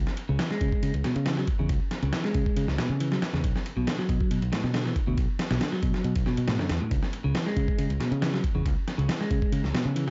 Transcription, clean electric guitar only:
0.29 0.38 C#3 loud
0.39 0.49 E3 medium
0.51 0.93 G#3 loud
1.04 1.14 B2 medium
1.26 1.36 E3 medium
1.37 1.47 F#3 medium
1.59 1.69 C#3 medium
2.03 2.12 C#3 loud
2.13 2.23 E3 medium
2.25 2.67 G#3 loud
2.78 2.88 B2 medium
3.00 3.11 E3 medium
3.12 3.21 F#3 medium
3.34 3.43 C#3 medium
3.77 3.86 B2 loud
3.87 3.97 D3 medium
3.98 4.41 F#3 loud
4.52 4.62 A2 medium
4.74 4.84 D3 medium
4.85 4.95 E3 medium
5.07 5.17 B2 medium
5.51 5.60 B2 loud
5.61 5.71 D3 medium
5.72 6.15 F#3 loud
6.26 6.36 B2 medium
6.48 6.58 B2 medium
6.59 6.69 D3 medium
6.81 6.90 A2 medium
7.24 7.34 C#3 loud
7.35 7.45 E3 medium
7.46 7.89 G#3 loud
8.00 8.10 B2 medium
8.21 8.32 E3 medium
8.33 8.43 F#3 medium
8.55 8.65 C#3 medium
8.98 9.08 C#3 loud
9.08 9.18 E3 medium
9.20 9.62 G#3 loud
9.74 9.84 B2 medium
9.96 10.06 E3 medium
10.07 10.10 F#3 medium

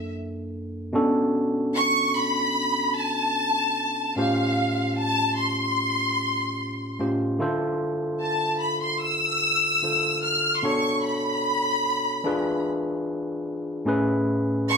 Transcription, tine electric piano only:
0.00 0.90 F#2 medium
0.00 0.90 A#3 medium
0.00 0.90 D4 medium
0.00 0.91 E4 medium
0.00 0.91 A4 medium
0.93 4.13 B2 medium
0.93 4.13 C#4 medium
0.93 4.13 D4 medium
0.93 4.14 F#4 medium
0.93 4.14 A4 medium
4.16 6.95 A2 medium
4.16 6.96 C#4 medium
4.16 6.96 F4 medium
4.16 6.96 G4 medium
4.16 6.97 C5 medium
6.99 7.40 A2 medium
6.99 7.40 C#4 medium
6.99 7.39 F4 medium
6.99 7.41 G4 medium
6.99 7.41 C5 medium
7.39 9.78 D3 medium
7.39 9.78 E4 medium
7.39 9.79 F4 medium
7.39 9.79 A4 medium
7.39 9.79 C5 medium
9.82 10.63 D3 soft
9.82 10.64 E4 soft
9.82 10.64 F4 soft
9.82 10.64 A4 soft
9.82 10.64 C5 soft
10.63 12.21 B2 medium
10.63 12.21 D4 medium
10.63 12.22 F#4 medium
10.63 12.22 A4 medium
10.63 12.22 C#5 medium
12.24 13.83 E3 medium
12.24 13.83 D4 medium
12.24 13.83 F4 medium
12.24 13.84 G#4 medium
12.24 13.84 B4 medium
13.85 14.77 A2 medium
13.85 14.77 C#4 medium
13.85 14.77 E4 medium
13.85 14.77 G#4 medium
13.85 14.77 B4 loud

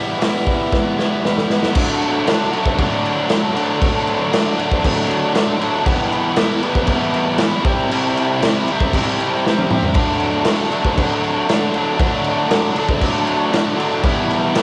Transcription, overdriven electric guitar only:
0.00 0.18 E3 medium
0.00 0.20 G3 medium
0.00 0.21 B3 medium
0.00 0.22 E4 medium
0.19 1.21 E3 medium
0.19 1.01 G3 medium
0.19 1.00 B3 medium
0.24 0.97 E4 medium
0.99 1.23 G3 medium
0.99 1.25 B3 medium
0.99 1.26 E4 medium
1.23 1.74 E3 medium
1.23 1.53 G3 medium
1.23 1.51 B3 loud
1.27 1.48 E4 loud
1.49 1.75 B3 medium
1.49 1.74 E4 medium
1.54 1.76 G3 medium
1.75 2.26 D3 medium
1.75 2.27 F#3 medium
1.75 2.27 A3 loud
1.75 2.29 D4 loud
2.27 2.51 D3 medium
2.27 2.51 F#3 loud
2.27 2.53 A3 loud
2.27 2.53 D4 loud
2.51 2.77 D3 medium
2.51 2.77 F#3 medium
2.51 2.78 A3 medium
2.51 2.78 D4 loud
2.78 3.28 D3 loud
2.78 3.28 F#3 loud
2.78 3.30 A3 loud
2.78 3.31 D4 loud
3.30 3.54 D3 medium
3.30 3.55 F#3 medium
3.30 3.55 A3 medium
3.30 3.56 D4 loud
3.55 3.79 D3 loud
3.55 3.80 F#3 medium
3.55 3.80 A3 loud
3.55 3.81 D4 medium
3.80 4.30 D3 medium
3.80 4.32 F#3 loud
3.80 4.32 A3 loud
3.80 4.33 D4 loud
4.32 4.56 D3 medium
4.32 4.57 F#3 medium
4.32 4.58 A3 loud
4.32 4.59 D4 loud
4.57 4.82 D3 medium
4.57 4.83 F#3 loud
4.57 4.84 A3 loud
4.57 4.84 D4 loud
4.83 5.33 D3 medium
4.83 5.34 F#3 loud
4.83 5.34 A3 loud
4.83 5.35 D4 loud
5.34 5.58 D3 medium
5.34 5.60 F#3 medium
5.34 5.60 A3 medium
5.34 5.60 D4 medium
5.59 5.84 D3 medium
5.59 5.85 F#3 medium
5.59 5.85 A3 loud
5.59 5.85 D4 loud
5.86 6.38 E3 loud
5.86 6.38 G3 medium
5.86 6.38 B3 loud
5.86 6.40 E4 loud
6.38 6.62 E3 medium
6.38 6.64 G3 medium
6.38 6.63 B3 medium
6.38 6.65 E4 loud
6.63 6.85 E3 medium
6.63 6.86 G3 medium
6.63 6.87 B3 loud
6.63 6.87 E4 loud
6.86 7.38 E3 loud
6.86 7.39 G3 loud
6.86 7.40 B3 loud
6.86 7.41 E4 loud
7.39 7.63 E3 medium
7.39 7.63 G3 medium
7.39 7.64 B3 medium
7.39 7.64 E4 loud
7.63 7.89 C3 loud
7.63 7.90 G3 loud
7.63 7.91 C4 loud
7.63 7.92 E4 loud
7.90 8.41 C3 loud
7.90 8.42 G3 medium
7.90 8.43 C4 loud
7.90 8.44 E4 loud
8.42 8.68 C3 medium
8.42 8.69 G3 loud
8.42 8.70 C4 medium
8.42 8.71 E4 loud
8.69 8.94 C3 medium
8.69 8.94 G3 medium
8.69 8.95 C4 medium
8.69 8.96 E4 loud
8.95 9.45 C3 loud
8.95 9.46 G3 loud
8.95 9.46 C4 loud
8.95 9.47 E4 loud
9.46 9.69 C3 medium
9.46 9.70 G3 medium
9.46 9.72 C4 loud
9.46 9.72 E4 medium
9.71 9.94 C3 medium
9.71 9.95 G3 medium
9.71 9.96 C4 loud
9.71 9.96 E4 medium
9.95 10.45 D3 medium
9.95 10.46 F#3 loud
9.95 10.48 A3 medium
9.95 10.48 D4 medium
10.46 10.71 D3 medium
10.46 10.72 F#3 medium
10.46 10.73 A3 loud
10.46 10.73 D4 medium
10.72 10.95 D3 medium
10.72 10.96 F#3 loud
10.72 10.98 A3 medium
10.72 10.97 D4 medium
10.96 11.46 D3 loud
10.96 11.48 F#3 loud
10.96 11.48 A3 loud
10.96 11.49 D4 loud
11.48 11.73 D3 medium
11.48 11.74 F#3 medium
11.48 11.75 A3 medium
11.48 11.75 D4 loud
11.74 11.96 D3 medium
11.74 11.98 F#3 loud
11.74 11.98 A3 medium
11.74 11.99 D4 loud
11.98 12.47 D3 medium
11.98 12.48 F#3 medium
11.98 12.49 A3 loud
11.98 12.49 D4 loud
12.48 12.75 D3 medium
12.48 12.75 F#3 medium
12.48 12.77 A3 medium
12.48 12.78 D4 loud
12.76 13.00 D3 medium
12.76 13.01 F#3 medium
12.76 13.02 A3 medium
12.76 13.02 D4 loud
13.01 13.50 D3 medium
13.01 13.51 F#3 loud
13.01 13.52 A3 loud
13.01 13.53 D4 loud
13.51 13.75 D3 medium
13.51 13.76 F#3 medium
13.51 13.77 A3 medium
13.51 13.77 D4 loud
13.76 14.02 D3 medium
13.76 14.02 F#3 medium
13.76 14.03 A3 medium
13.76 14.02 D4 loud
14.03 14.55 E3 medium
14.03 14.56 G3 loud
14.03 14.55 B3 loud
14.03 14.56 E4 loud
14.55 14.62 E3 medium
14.55 14.62 G3 loud
14.55 14.62 B3 loud
14.55 14.62 E4 medium

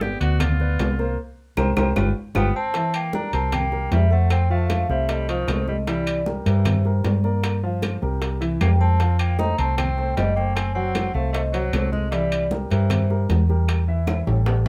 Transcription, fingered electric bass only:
0.00 0.15 G1 medium
0.21 0.75 D2 medium
0.79 1.16 C2 medium
1.57 1.72 C2 medium
1.77 1.91 C2 medium
1.97 2.11 G1 loud
2.35 2.50 G1 medium
3.33 3.88 C2 medium
3.91 4.83 F2 medium
4.89 5.44 C2 medium
5.48 6.40 C2 medium
6.46 7.01 G2 medium
7.04 7.96 G2 medium
8.03 8.57 C2 medium
8.61 9.53 F2 medium
9.59 10.13 C2 medium
10.17 11.09 F#1 medium
11.15 11.69 C2 medium
11.73 12.65 C2 medium
12.71 13.25 G2 medium
13.29 14.21 E2 medium
14.27 14.68 A1 medium

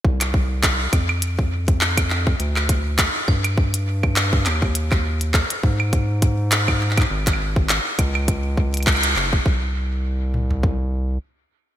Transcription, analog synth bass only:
0.05 0.88 C2 loud
0.93 2.35 F2 loud
2.40 3.09 D2 loud
3.28 4.47 G2 loud
4.46 5.44 D#2 loud
5.63 7.06 G#2 loud
7.10 7.80 G#1 loud
7.99 9.16 C#2 loud
9.16 9.40 F#1 medium
9.46 11.18 C2 loud

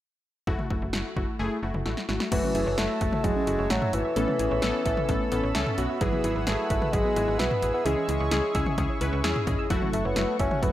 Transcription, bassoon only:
2.32 2.80 E3 loud
2.78 3.26 A3 loud
3.25 3.72 G#3 loud
3.71 3.95 F#3 loud
3.94 5.78 E3 loud
6.01 6.49 E3 medium
6.47 6.94 A3 loud
6.93 7.41 G#3 loud
7.39 7.73 B3 loud
7.74 7.87 B3 loud
7.85 8.78 G#3 loud
9.93 10.07 A3 medium
10.05 10.39 B3 medium
10.40 10.64 C#4 medium
10.62 10.72 B3 loud

